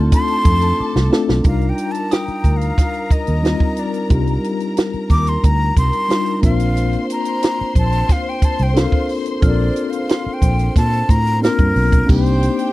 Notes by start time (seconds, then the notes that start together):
Already playing: A3 C4 D4 D#4 F4 A4 C6 F6 G6
0.10 A4 A5 C6, kick, closed hi-hat
0.28 closed hi-hat
0.45 F2, kick, closed hi-hat
0.61 closed hi-hat
0.80 D6, muted fingered electric bass stroke
0.96 C2, snare
1.10 A3 C4 D4 F4 A4, snare
1.29 B1, snare
1.44 C2 G3 D4 D#4 F4 A#4 F5 A#5, kick, closed hi-hat
1.61 closed hi-hat
1.69 G5
1.78 closed hi-hat
1.92 A5, closed hi-hat
2.11 G5 D#6, snare, closed hi-hat
2.28 muted fingered electric bass stroke, closed hi-hat
2.44 D2, kick, closed hi-hat
2.57 F5
2.61 closed hi-hat
2.78 kick, snare, closed hi-hat
2.94 closed hi-hat
3.10 D#5, muted fingered electric bass stroke, kick, closed hi-hat
3.27 D#2, closed hi-hat
3.42 G3 C4 D#4 F4 A#4, snare, closed hi-hat
3.60 kick
3.77 D5, closed hi-hat
3.94 closed hi-hat
4.09 C2 G3 D4 D#4 F4 G4, kick, closed hi-hat
4.27 closed hi-hat
4.44 closed hi-hat
4.60 closed hi-hat
4.77 snare, closed hi-hat
4.93 muted fingered electric bass stroke, closed hi-hat
5.10 D#2 D6, kick, closed hi-hat
5.27 C6, closed hi-hat
5.44 D2 A#5, kick, closed hi-hat
5.77 C2 C6, kick, closed hi-hat
5.93 closed hi-hat
6.09 G3 D4 D#4 F4 A#4, snare, closed hi-hat
6.26 closed hi-hat
6.42 A#1 A#3 C4 D4 F4 A#4 C5 F5 C6, kick, closed hi-hat
6.60 closed hi-hat
6.77 closed hi-hat
6.93 closed hi-hat
7.10 A#5, closed hi-hat
7.25 closed hi-hat
7.43 snare, closed hi-hat
7.61 muted fingered electric bass stroke
7.75 A#1 A5, kick, closed hi-hat
7.92 closed hi-hat
8.09 F5, kick, snare, closed hi-hat
8.29 G5
8.42 A5, muted fingered electric bass stroke, kick, closed hi-hat
8.59 C2, closed hi-hat
8.63 G5
8.74 C4 D4 F4 A4, snare, closed hi-hat
8.79 F5
8.83 A#4
8.92 kick
9.09 open hi-hat
9.26 closed hi-hat
9.41 A#1 C4 D4 F4 A4 F6, kick, closed hi-hat
9.46 D5
9.50 A#4
9.76 closed hi-hat
9.90 F5, closed hi-hat
10.09 C6, snare, closed hi-hat
10.26 muted fingered electric bass stroke
10.34 G5
10.42 A#1, kick, closed hi-hat
10.59 closed hi-hat
10.76 A#2 A5, kick, snare, closed hi-hat
10.93 closed hi-hat
11.09 A2 A#5, kick, closed hi-hat
11.27 closed hi-hat
11.40 A#3 C4 D4 F4 A#4, closed hi-hat
11.45 snare
11.59 G2, kick, closed hi-hat
11.76 B1, open hi-hat
11.92 kick, closed hi-hat
12.06 C2 A#3 C4 D4 D#4 G4 C5 G5, kick, crash
12.26 closed hi-hat
12.43 closed hi-hat
12.59 closed hi-hat